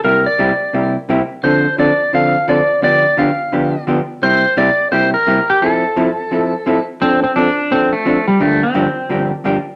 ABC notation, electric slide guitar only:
X:1
M:4/4
L:1/8
Q:"Swing" 1/4=172
K:F
V:1 name="Electric slide guitar"
B d4 z3 | c2 d2 f2 d2 | d2 f4 z2 | c2 d2 c B2 G |
A6- A z | C C D2 C A,2 G, | A, C4 z3 |]